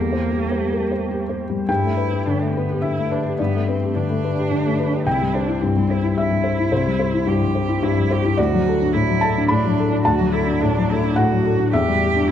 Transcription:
Already playing: felt piano E2, ambient pad G3 G4 C5, cello A#3
0.13 felt piano C5
0.33 felt piano G4
0.51 felt piano C5
0.72 felt piano A#4
0.92 felt piano C5
1.11 felt piano G4
1.29 felt piano C5
1.49 felt piano G3
1.69 felt piano G2 G5, ambient pad A3 G4 B4, cello E4
1.84 felt piano A3
1.97 felt piano B4
2.13 felt piano G4
2.26 felt piano D3, cello D4
2.42 felt piano A3
2.53 cello B3, felt piano B4
2.70 felt piano G4
2.82 felt piano D3 E5, cello E4
2.98 felt piano A3
3.11 cello D4, felt piano B4
3.26 felt piano G4
3.38 felt piano G2 D5, cello B3
3.55 felt piano A3
3.66 cello C4, felt piano B4
3.83 felt piano G4
3.95 felt piano D3, cello D4
4.10 felt piano A3
4.25 felt piano B4
4.37 felt piano G4
4.51 felt piano D3
4.66 felt piano A3
4.80 felt piano B4
4.93 felt piano G4
5.06 felt piano C2 G5, ambient pad G3 E4 C5, cello E4
5.21 felt piano G3
5.34 cello D4, felt piano C5
5.47 felt piano E4
5.62 felt piano G2, cello C4
5.76 felt piano G3
5.90 cello E4, felt piano C5
6.02 felt piano E4
6.16 felt piano G2 E5, cello E4
6.31 felt piano G3
6.44 felt piano C5
6.58 felt piano E4
6.72 felt piano C2 C5
6.87 felt piano G3
6.99 felt piano C5
7.14 felt piano E4
7.26 felt piano G2, cello G4
7.41 felt piano G3
7.55 felt piano C5
7.69 felt piano E4
7.82 felt piano G2, cello E4
7.97 felt piano G3
8.11 cello G4, felt piano C5
8.25 felt piano E4
8.37 felt piano D2 D5, ambient pad A3 F#4 D5, cello F#4
8.53 felt piano F#3
8.68 felt piano A4
8.82 felt piano D4
8.93 felt piano A2, cello E4
9.09 felt piano F#3
9.21 felt piano A4 A5
9.38 felt piano D4
9.48 felt piano A2 B5, cello D4
9.65 felt piano F#3
9.79 felt piano A4
9.92 felt piano D4
10.03 felt piano D2 A5, cello F#4
10.20 felt piano F#3
10.33 cello E4, felt piano A4
10.47 felt piano D4
10.61 felt piano A2, cello D4
10.77 felt piano F#3
10.90 cello E4, felt piano A4
11.04 felt piano D4
11.16 felt piano A2 F#5, cello F#4
11.32 felt piano F#3
11.46 felt piano A4
11.59 felt piano D4
11.72 felt piano E2 E5, ambient pad B3 G4 D5, cello G4
11.88 felt piano G3
12.03 felt piano G4
12.16 felt piano D4
12.28 cello E4

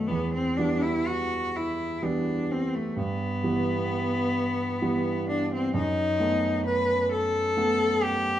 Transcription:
Already playing: grand piano D#3 F#3 B3
0.08 grand piano E2, cello B3
0.34 cello C4
0.57 grand piano E3 G3 B3, cello D4
0.82 cello E4
1.08 cello F#4
1.56 cello E4
2.02 grand piano E3 G3 B3, cello D4
2.52 cello C4
2.75 cello A3
2.96 grand piano G2, cello B3
3.43 grand piano E3 G3 B3
4.82 grand piano E3 G3 B3
5.30 cello D4
5.54 cello C4
5.74 grand piano F#2, cello D#4
6.20 grand piano A3 B3
6.66 cello B4
7.12 cello A4
7.57 grand piano A3 B3
8.03 cello G4

